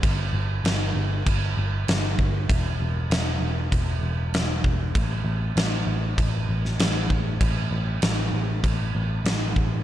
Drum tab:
CC |x---x---x---x---|x---x---x---x---|x---x---x---x---|x---x---x---x---|
SD |----o-------o---|----o-------o---|----o------oo---|----o-------o---|
BD |o-------o-----o-|o-------o-----o-|o-------o-----o-|o-------o-----o-|